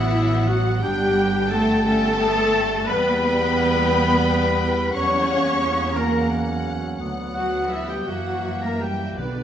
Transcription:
Already playing: A1 E3 F#3 B3 E4 E5 F#5
0.46 F#3 F#4 F#5
0.79 G1 G3 D4 G4 G5
1.50 A3 A4 A5
1.84 A3 C#4 A4 A5
2.20 B3
2.55 A3
2.87 E2 G3 B3 B4 G5 B5
4.94 E2 F#3 A#3 C#4 C#5 F#5 C#6
5.30 A#3
5.64 B3
5.96 F#3 A#3 C#4 A#4 F#5 A#5
6.99 D2 B3 F#5
7.34 F#3 F#4 F#5
7.69 E3 E4 E5
7.87 G3 G4 G5
8.06 F#2 E3 F#3 A#3 F#4 E5 F#5
8.61 A#3 A#4 A#5
8.80 G3 G4 G5
9.19 B1 B2 D3 B3 D4 B4 D5

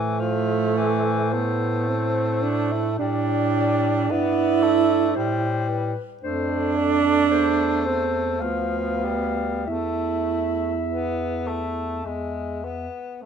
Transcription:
Already playing: A2 E3 A3 C5
0.20 F3
0.77 E3
1.33 A3 B3
1.88 C4
2.42 D4
2.72 E4
2.98 A2 G3 D4 D5
4.08 G2 B3 E4 D5
4.63 A3
5.15 A2 G3 C5
5.68 B4
6.23 F2 A3 D4 C5
6.77 D5
7.31 E2 C5
7.84 C4 C5
8.39 D2 F3 B3 F5
9.05 G3
9.66 E2 A3 E4 E5
10.88 B3
11.47 A3
12.03 E2 G#3 E5
12.64 B3
13.22 A3

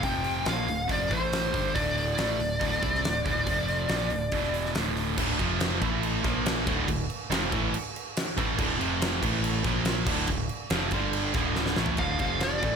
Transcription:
0.03 F1 F2 C3 F3 G5, kick, open hi-hat
0.24 open hi-hat
0.46 A#1 A#2 F3 A#3 F5, snare, open hi-hat
0.67 D1 D2 A2, open hi-hat
0.89 F1 F2 C3 F3 D5, kick, open hi-hat
1.11 A1 A2 E3 A3 C5, kick, open hi-hat
1.33 snare, open hi-hat
1.54 G1 G2 D3 G3, kick, open hi-hat
1.74 D1 D2 A2 D3 D5, kick, open hi-hat
1.96 D5, open hi-hat
2.18 A1 A2 E3 A3, snare, open hi-hat
2.39 D1 D2 A2, open hi-hat
2.61 D1 D2 A2 D3, kick, open hi-hat
2.72 snare
2.82 C2 C3 G3 C4, kick, open hi-hat
2.95 snare
3.05 D1 D2 A2, snare, open hi-hat
3.25 D1 D2 A2 D3, kick, open hi-hat
3.46 F1 F2 C3 F3, kick, open hi-hat
3.68 open hi-hat
3.89 A#1 A#2 F3 A#3, snare, open hi-hat
4.10 D1 D2 A2, open hi-hat
4.32 E1 E2 B2 E3, kick, open hi-hat
4.43 snare
4.54 open hi-hat
4.65 snare
4.75 D1 D2 A2 D3, snare, open hi-hat
4.97 open hi-hat
5.17 D1 D2 A2 D3, kick, crash
5.39 F1 F2 C3 F3, kick, crash
5.60 snare, crash
5.81 A1 A2 E3 A3, kick, crash
6.03 crash
6.24 A#1 A#2 F3 A#3, kick, snare, crash
6.46 snare, crash
6.66 D1 D2 A2 D3, kick, crash
6.87 D1 D2 A2, kick, crash
7.10 crash
7.30 F1 F2 C3 F3, snare, crash
7.52 A1 A2 E3 A3, kick, crash
7.74 crash
7.96 crash
8.17 snare, crash
8.37 A1 A2 E3 A3, kick, crash
8.59 D1 D2 A2 D3, kick, crash
8.78 F1 F2 C3 F3, crash
9.02 snare, crash
9.23 A1 A2 E3 A3, kick, crash
9.44 crash
9.64 A#1 A#2 F3 A#3, kick, snare, crash
9.85 snare, crash
10.06 D1 D2 A2 D3, kick, crash
10.27 D1 D2 A2, kick, crash
10.49 crash
10.70 F1 F2 C3 F3, snare, crash
10.91 G1 G2 D3 G3, kick, crash
11.13 crash
11.34 D1 D2 A2 D3, kick, snare, crash
11.56 snare
11.66 snare
11.76 A1 A2 E3 A3, snare
11.86 floor tom
11.97 D1 D2 A2 D3 F5, kick, crash
12.19 F1 F2 C3 F3, kick, crash
12.40 D5, snare, crash
12.63 A1 A2 E3 A3, kick, crash

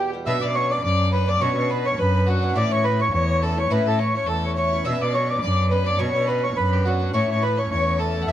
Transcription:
Already playing: E2 B2 E3 G4
0.00 G3 B3 G4
0.13 G3 B3 G4
0.26 B2 F#3 B3 C#4 D4 E5
0.41 B2 D5
0.55 F#3 B3 C#4 D4 C#5
0.70 B3 C#4 D4 D5
0.84 F#2 D5
1.12 F#3 B3 C#4 D4 B4
1.27 B3 C#4 D4 D5
1.41 B2 F#3 B3 C#4 D4 C#5
1.57 B2 C#5
1.70 F#3 B3 C#4 D4 B4
1.85 B3 C#4 D4 C#5
1.98 F#2 B4
2.27 F#3 B3 C#4 D4 F#4
2.42 B3 C#4 D4
2.53 A2 E3 A3 C#4 D5 E5
2.57 E4 D5
2.71 A2 C#5
2.84 E3 A3 C#4 E4 B4
3.00 A3 C#4 E4 C#5
3.13 E2 C#5
3.42 E3 A3 C#4 E4 A4
3.57 A3 C#4 E4 C#5
3.67 A2 B4 C#5
3.71 E3 A3 C#4 E4 B4
3.86 A2 A4
3.99 E3 A3 C#4 E4 C#5
4.14 A3 C#4 E4 C#5
4.27 E2 A4
4.45 C#5
4.56 E3 A3 C#4 E4 C#5
4.72 A3 C#4 E4
4.85 B2 F#3 B3 C#4 D4 E5
5.01 B2 D5
5.13 F#3 B3 C#4 D4 C#5
5.29 B3 C#4 D4 D5
5.41 F#2 D5
5.70 F#3 B3 C#4 D4 B4
5.86 B3 C#4 D4 D5
5.98 B2 F#3 B3 C#4 D4 C#5
6.13 B2 C#5
6.27 F#3 B3 C#4 D4 B4
6.43 B3 C#4 D4 C#5
6.56 F#2 B4
6.72 G4
6.85 F#3 B3 C#4 D4 F#4
7.00 B3 C#4 D4
7.13 A2 E3 A3 C#4 E4 C#5
7.29 A2 C#5
7.42 E3 A3 C#4 E4 B4
7.57 A3 C#4 E4 C#5
7.71 E2 C#5
7.99 E3 A3 C#4 E4 A4
8.14 A3 C#4 E4
8.22 F#5
8.28 E2 E3 G3 E5

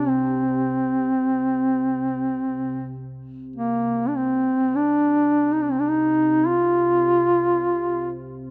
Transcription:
Already playing: C3
0.08 C4
3.56 C3 A#3
4.08 D4
4.16 C4
4.75 D4
5.53 D#4
5.62 D4
5.71 C4
5.80 D4
5.89 D#4
6.47 F4

